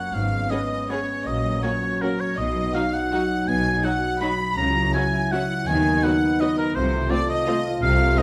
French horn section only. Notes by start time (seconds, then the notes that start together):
0.13 B3 C#4
1.27 F#3
2.38 F#3 D#4
4.57 F#3 E4
5.67 B3 D#4
6.76 A3 F4